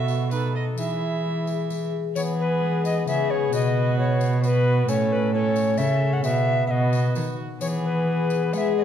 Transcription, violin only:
Already playing: E5
0.33 B4
0.56 D#5
0.78 E5
2.17 G#4
3.09 G#4
3.53 F#4
4.42 F#4
4.89 A4
5.34 A4
5.79 A4
6.25 F#4
6.70 F#4
7.62 G#4
8.52 G#4

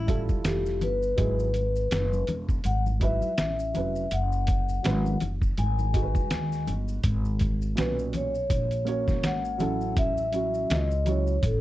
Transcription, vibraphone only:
0.47 G4
0.83 B4
2.66 F#5
3.03 E5
4.13 F#5
5.59 G#5
7.79 B4
8.16 C#5
9.25 F#5
9.98 E5
10.72 D#5
11.09 C#5
11.45 A4

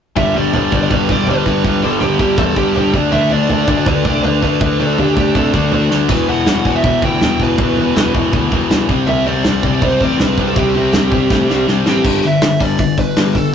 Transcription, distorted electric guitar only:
0.16 G2 D3 G3
0.35 G2 D3 G3
0.52 G2 D3 G3
0.71 G2 D3 G3
0.90 G2 D3 G3
1.08 G2 D3 G3
1.28 G2 D3 G3
1.45 G2 D3 G3
1.64 G2 D3 G3
1.82 G2 D3 G3
2.01 G2 D3 G3
2.19 G2 D3 G3
2.37 G2 D3 G3
2.55 G2 D3 G3
2.75 G2 D3 G3
2.94 D3 A3 D4
3.13 D3 A3 D4
3.32 D3 A3 D4
3.50 D3 A3 D4
3.70 D3 A3 D4
3.88 D3 A3 D4
4.06 D3 A3 D4
4.24 D3 A3 D4
4.44 D3 A3 D4
4.60 D3 A3 D4
4.78 D3 A3 D4
4.98 D3 A3 D4
5.15 D3 A3 D4
5.34 D3 A3 D4
5.52 D3 A3 D4
5.71 D3 A3 D4
5.90 D3 A3 D4
6.09 E2 B2 E3
6.27 E2 B2 E3
6.46 E2 B2 E3
6.65 E2 B2 E3
6.85 E2 B2 E3
7.03 E2 B2 E3
7.22 E2 B2 E3
7.41 E2 B2 E3
7.60 E2 B2 E3
7.80 E2 B2 E3
7.96 E2 B2 E3
8.14 E2 B2 E3
8.34 E2 B2 E3
8.52 E2 B2 E3
8.71 E2 B2 E3
8.90 C3 G3 C4
9.08 C3 G3 C4
9.26 C3 G3 C4
9.46 C3 G3 C4
9.65 C3 G3 C4
9.84 C3 G3 C4
10.01 C3 G3 C4
10.21 C3 G3 C4
10.39 C3 G3 C4
10.57 C3 G3 C4
10.76 C3 G3 C4
10.95 C3 G3 C4
11.12 C3 G3 C4
11.30 C3 G3 C4
11.48 C3 G3 C4
11.68 C3 G3 C4
11.85 C3 G3 C4

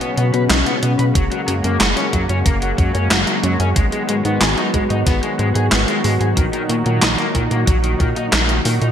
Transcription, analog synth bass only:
0.18 B2
0.34 B2
0.50 B1
0.83 B2
0.99 B2
1.15 F#1
1.48 F#2
1.64 F#2
1.80 F#1
2.13 F#2
2.29 F#2
2.46 F#1
2.78 F#2
2.95 F#2
3.11 F#1
3.43 F#2
3.60 F#2
3.76 G#1
4.09 G#2
4.25 G#2
4.41 G#1
4.74 G#2
4.90 G#2
5.07 G#1
5.39 G#2
5.55 G#2
5.72 G#1
6.04 G#2
6.21 G#2
6.37 A#1
6.70 A#2
6.86 A#2
7.02 A#1
7.35 A#2
7.51 A#2
7.67 A#1
8.00 A#2
8.16 A#2
8.33 A#1
8.65 A#2
8.82 A#2

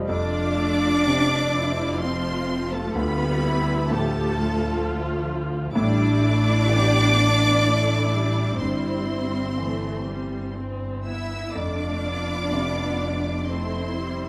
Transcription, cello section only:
0.10 D4
2.01 C4
2.73 A3
2.97 B3
3.90 A3
5.76 D4
8.61 C4
11.06 E4
11.55 D4
13.47 C4

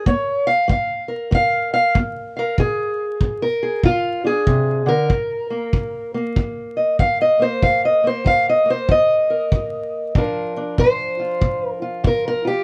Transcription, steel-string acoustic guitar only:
Already playing: D4 A#4
0.07 A#3 C#5
0.47 F5
0.68 A#3 F5
1.08 A#4
1.31 A#3 F5
1.74 F5
1.95 A#3
2.37 A#4 F5
2.59 A#2 G#4
3.23 A#2
3.42 A#4
3.63 G#4
3.84 A#2 F4
4.24 D4 G#4
4.47 C3
4.86 D3 A#4
5.10 D#3
5.50 A#3
5.74 D#3
6.14 A#3
6.37 D#3
6.77 D#5
7.00 D#3 F5
7.22 D#5
7.39 A#3 C5
7.63 D#3 F5
7.85 D#5
8.04 A#3 C5
8.24 D#3 F5
8.49 D#5
8.66 A#3
8.70 C5
8.89 D#3 D#5
9.30 A#4
9.52 D#3
10.16 A#2 F3 D4 F4 A#4
10.57 D4
10.79 A#2 C5
11.19 F4
11.41 A#2
11.68 A#4
11.82 F4
12.04 A#2 A#4
12.28 A#4
12.45 F4 G4

